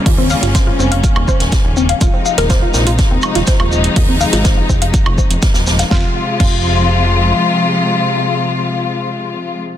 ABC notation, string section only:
X:1
M:4/4
L:1/8
Q:1/4=123
K:Fm
V:1 name="String section" clef=bass
[D,G,B,D]8 | [C,F,A,E]8- | [C,F,A,E]8 | [C,F,A,F]8- |
[C,F,A,F]8 |]